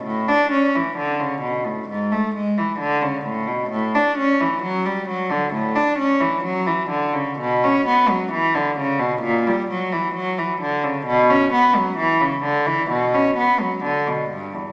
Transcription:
\new Staff \with { instrumentName = "Cello" } { \clef bass \time 4/4 \key a \mixolydian \tempo 4 = 65 a,16 d'16 cis'16 e16 d16 cis16 b,16 a,16 gis,16 a16 gis16 e16 d16 cis16 a,16 b,16 | a,16 d'16 cis'16 e16 fis16 g16 fis16 d16 a,16 d'16 cis'16 e16 fis16 e16 d16 cis16 | b,16 cis'16 b16 fis16 e16 d16 cis16 b,16 ais,16 g16 fis16 e16 fis16 e16 d16 cis16 | b,16 cis'16 b16 fis16 e16 cis16 d16 e16 b,16 cis'16 b16 fis16 d16 b,16 g,16 e,16 | }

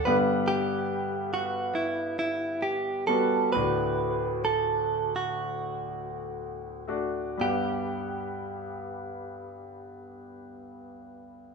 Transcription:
<<
  \new Staff \with { instrumentName = "Clean electric guitar" } { \time 4/4 \key g \major \tempo 4 = 62 b'8 g'4 fis'8 e'8 e'8 g'8 a'8 | b'4 a'8. fis'4.~ fis'16 r8 | g'1 | }
  \new Staff \with { instrumentName = "Grand piano" } { \time 4/4 \key g \major << { <g b fis''>2 r4. <g b fis'>8 | <a d' fis'>2 r4. <a d' fis'>8 | <g b fis''>1 | } \\ { <g, d>1 | <d, a,>1 | g,1 | } >> }
>>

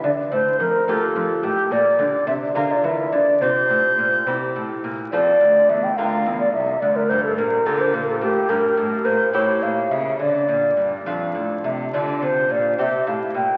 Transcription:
<<
  \new Staff \with { instrumentName = "Flute" } { \time 6/8 \key g \dorian \tempo 4. = 71 d''8 c''8 bes'8 a'4 g'8 | d''4 e''8 f''16 d''16 e''8 d''8 | c''4. r4. | d''4 e''16 g''16 f''8. d''16 e''8 |
d''16 bes'16 c''16 a'16 bes'8 a'16 c''16 bes'16 a'16 g'8 | \key d \minor bes'4 c''8 cis''8 f''8 e''8 | d''4. r4 e''8 | d''8 c''8 d''8 e''8 f''8 g''8 | }
  \new Staff \with { instrumentName = "Lute" } { \time 6/8 \key g \dorian r4. <bes f' g'>4. | r4. <bes f' bes'>4. | <c' f' g'>4. <c' e' g'>4. | <c' f' a'>4. <bes f' bes'>4. |
r4. <bes f' g'>4. | \key d \minor <bes g'>4. <a e' g'>4. | r4. <a d' f'>4. | <a d' f'>4. <c' g'>4. | }
  \new Staff \with { instrumentName = "Lute" } { \clef bass \time 6/8 \key g \dorian d8 a,8 f,8 d,8 f,8 a,8 | bes,8 d8 c8 d8 e8 d8 | c8 a,8 bes,8 c8 a,8 bes,8 | f,8 d,8 e,8 d,8 e,8 r8 |
d,8 g,8 bes,8 d8 bes,8 a,8 | \key d \minor g,8 a,8 bes,8 a,8 bes,8 cis8 | d8 bes,8 g,8 f,8 a,8 c8 | d8 c8 bes,8 c8 a,8 bes,8 | }
  \new Staff \with { instrumentName = "Cello" } { \clef bass \time 6/8 \key g \dorian d8 a,8 f,8 d,8 f,8 a,8 | bes,8 d8 c8 d8 e8 d8 | c8 a,8 bes,8 c8 a,8 bes,8 | f,8 d,8 e,8 d,8 e,8 c,8 |
d,8 g,8 bes,8 d8 bes,8 a,8 | \key d \minor g,8 a,8 bes,8 a,8 bes,8 cis8 | d8 bes,8 g,8 f,8 a,8 c8 | d8 c8 bes,8 c8 a,8 bes,8 | }
>>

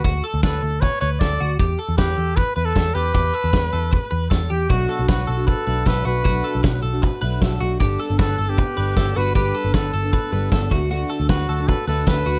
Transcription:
<<
  \new Staff \with { instrumentName = "Clean electric guitar" } { \time 4/4 \key b \minor \tempo 4 = 155 fis'8 a'8 b'8 a'8 b'8 b'8 a'8 fis'8 | g'8 a'8 b'8 a'8 b'8 b'8 a'8 g'8 | g'8 a'8 b'8 a'8 b'8 b'8 a'8 g'8 | fis'8 a'8 b'8 a'8 b'8 b'8 a'8 fis'8 |
fis'8 a'8 b'8 a'8 b'8 b'8 a'8 fis'8 | g'8 a'8 b'8 a'8 b'8 b'8 a'8 fis'8 | g'8 a'8 b'8 a'8 b'8 b'8 a'8 fis'8 | fis'8 a'8 b'8 a'8 b'8 b'8 a'8 fis'8 | }
  \new Staff \with { instrumentName = "Trumpet" } { \time 4/4 \key b \minor r4 a'4 cis''8 cis''8 d''4 | r4 g'4 b'8 b'16 a'8. b'8~ | b'2. r8 g'8 | fis'4 fis'4 a'4 b'8 b'8~ |
b'4. r2 r8 | r4 a'8. g'4.~ g'16 b'8 | b'4 a'2~ a'8 r8 | r4 fis'4 a'8 a'8 b'4 | }
  \new Staff \with { instrumentName = "Steel-string acoustic guitar" } { \time 4/4 \key b \minor r1 | r1 | r1 | <b, fis a d' fis'>8. <a d' fis'>4 <a d' fis'>8. <fis a d' fis'>8 <fis a d' fis'>8 <fis a d' fis'>8 |
<b, fis a d' fis'>8. <a d' fis'>4 <a d' fis'>8. <fis a d' fis'>8 <fis a d' fis'>8 <fis a d' fis'>8 | <g b d' a'>8. <b d' a'>4 <b d' a'>8. <g b d' a'>8 <g b d' a'>8 <g b d' a'>8 | <g b d' a'>8. <b d' a'>4 <b d' a'>8. <g b d' a'>8 <g b d' a'>8 <d a d' fis'>8 | <d a d' fis'>8. <a d' fis'>4 <a d' fis'>8. <d a d' fis'>8 <d a d' fis'>8 <d a d' fis'>8 | }
  \new Staff \with { instrumentName = "Picked electric bass" } { \clef bass \time 4/4 \key b \minor d,8 r16 d,16 r8 d,8. r16 d,8 d,8 d,8 | e,8 r16 e,16 e,8 e,8. r16 e,8 e,8 e,8 | e,8 r16 e,16 e,8 e,8. r16 e,8 e,8 e,8 | b,,8 r16 b,,16 b,,8 b,,8. r16 b,,8 b,,8 b,,8 |
b,,8 r16 b,,16 b,,8 b,,8. r16 b,,8 b,,8 b,,8 | g,,8 r16 g,,16 g,,8 g,,8. r16 g,,8 g,,8 g,,8 | g,,8 r16 g,,16 g,,8 g,,8. r16 g,,8 g,,8 d,8~ | d,8 r16 d,16 d,8 d,8. r16 d,8 d,8 d,8 | }
  \new DrumStaff \with { instrumentName = "Drums" } \drummode { \time 4/4 <hh bd>4 <hh bd sn>4 <hh bd>4 <hh bd sn>4 | <hh bd>4 <hh bd sn>4 <hh bd>4 <hh bd sn>4 | <hh bd>4 <hh bd sn>4 <hh bd>4 <hh bd sn>4 | <hh bd>4 <hh bd sn>4 <hh bd>4 <hh bd sn>4 |
<hh bd>4 <hh bd sn>4 <hh bd>4 <hh bd sn>4 | <hh bd>8 hho8 <hh bd sn>8 hho8 <hh bd>8 hho8 <hh bd sn>8 hho8 | <hh bd>8 hho8 <hh bd sn>8 hho8 <hh bd>8 hho8 <hh bd sn>8 <hho bd>8 | hh8 hho8 <hh bd sn>8 hho8 <hh bd>8 hho8 <hh bd sn>8 hho8 | }
>>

